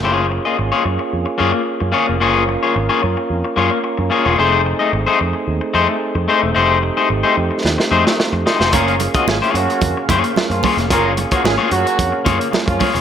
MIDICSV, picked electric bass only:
0, 0, Header, 1, 2, 480
1, 0, Start_track
1, 0, Tempo, 543478
1, 27, Time_signature, 4, 2, 24, 8
1, 11490, End_track
2, 0, Start_track
2, 0, Title_t, "Picked electric bass"
2, 0, Program_c, 0, 34
2, 43, Note_on_c, 0, 30, 82
2, 336, Note_off_c, 0, 30, 0
2, 523, Note_on_c, 0, 32, 80
2, 620, Note_off_c, 0, 32, 0
2, 756, Note_on_c, 0, 42, 101
2, 856, Note_off_c, 0, 42, 0
2, 1001, Note_on_c, 0, 41, 82
2, 1099, Note_off_c, 0, 41, 0
2, 1240, Note_on_c, 0, 42, 80
2, 1339, Note_off_c, 0, 42, 0
2, 1603, Note_on_c, 0, 42, 106
2, 1692, Note_off_c, 0, 42, 0
2, 1849, Note_on_c, 0, 29, 77
2, 1963, Note_off_c, 0, 29, 0
2, 1963, Note_on_c, 0, 30, 86
2, 2256, Note_off_c, 0, 30, 0
2, 2437, Note_on_c, 0, 32, 78
2, 2537, Note_off_c, 0, 32, 0
2, 2684, Note_on_c, 0, 42, 108
2, 2782, Note_off_c, 0, 42, 0
2, 2917, Note_on_c, 0, 41, 86
2, 3017, Note_off_c, 0, 41, 0
2, 3156, Note_on_c, 0, 42, 80
2, 3257, Note_off_c, 0, 42, 0
2, 3522, Note_on_c, 0, 42, 98
2, 3612, Note_off_c, 0, 42, 0
2, 3763, Note_on_c, 0, 28, 97
2, 3852, Note_off_c, 0, 28, 0
2, 3877, Note_on_c, 0, 29, 90
2, 4173, Note_off_c, 0, 29, 0
2, 4354, Note_on_c, 0, 32, 91
2, 4456, Note_off_c, 0, 32, 0
2, 4602, Note_on_c, 0, 41, 88
2, 4701, Note_off_c, 0, 41, 0
2, 4837, Note_on_c, 0, 39, 86
2, 4938, Note_off_c, 0, 39, 0
2, 5074, Note_on_c, 0, 41, 75
2, 5176, Note_off_c, 0, 41, 0
2, 5436, Note_on_c, 0, 41, 99
2, 5528, Note_off_c, 0, 41, 0
2, 5682, Note_on_c, 0, 28, 83
2, 5771, Note_off_c, 0, 28, 0
2, 5790, Note_on_c, 0, 29, 96
2, 6089, Note_off_c, 0, 29, 0
2, 6271, Note_on_c, 0, 32, 77
2, 6374, Note_off_c, 0, 32, 0
2, 6515, Note_on_c, 0, 41, 85
2, 6616, Note_off_c, 0, 41, 0
2, 6754, Note_on_c, 0, 39, 79
2, 6856, Note_off_c, 0, 39, 0
2, 6992, Note_on_c, 0, 41, 81
2, 7094, Note_off_c, 0, 41, 0
2, 7356, Note_on_c, 0, 41, 100
2, 7448, Note_off_c, 0, 41, 0
2, 7598, Note_on_c, 0, 29, 90
2, 7689, Note_off_c, 0, 29, 0
2, 7712, Note_on_c, 0, 30, 91
2, 8010, Note_off_c, 0, 30, 0
2, 8193, Note_on_c, 0, 32, 79
2, 8295, Note_off_c, 0, 32, 0
2, 8429, Note_on_c, 0, 42, 84
2, 8533, Note_off_c, 0, 42, 0
2, 8670, Note_on_c, 0, 41, 92
2, 8774, Note_off_c, 0, 41, 0
2, 8913, Note_on_c, 0, 42, 91
2, 9015, Note_off_c, 0, 42, 0
2, 9274, Note_on_c, 0, 42, 98
2, 9367, Note_off_c, 0, 42, 0
2, 9515, Note_on_c, 0, 29, 94
2, 9631, Note_off_c, 0, 29, 0
2, 9631, Note_on_c, 0, 30, 92
2, 9930, Note_off_c, 0, 30, 0
2, 10106, Note_on_c, 0, 32, 75
2, 10211, Note_off_c, 0, 32, 0
2, 10349, Note_on_c, 0, 42, 103
2, 10453, Note_off_c, 0, 42, 0
2, 10588, Note_on_c, 0, 41, 85
2, 10692, Note_off_c, 0, 41, 0
2, 10831, Note_on_c, 0, 42, 85
2, 10934, Note_off_c, 0, 42, 0
2, 11197, Note_on_c, 0, 42, 103
2, 11289, Note_off_c, 0, 42, 0
2, 11435, Note_on_c, 0, 28, 98
2, 11490, Note_off_c, 0, 28, 0
2, 11490, End_track
0, 0, End_of_file